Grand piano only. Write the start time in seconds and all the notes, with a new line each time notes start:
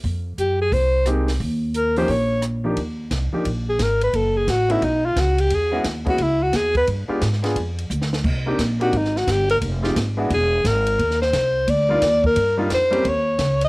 1.06 G#3 A#3 C4 D#4 G4
1.97 F3 A#3 C#4 D#4 G4
2.64 F3 A#3 D4 D#4 G4
3.32 F3 A#3 D4 D#4 G4
4.69 A3 B3 C#4 D#4 F#4
5.72 G#3 B3 C#4 E4 F#4
6.05 G#3 B3 C#4 E4 F#4
7.08 G#3 B3 D4 F4 G4
7.42 G#3 B3 D4 F4 G#4
8.46 A#3 C4 D4 D#4 G4
8.80 A#3 C4 D4 D#4 G4
9.82 G#3 C4 D#4 F4 G4
10.17 G#3 B3 D4 E4 F#4
11.89 G3 A#3 D4 D#4 F4
12.58 G3 A#3 D4 D#4 F4
12.91 G3 A#3 C4 C#4 G4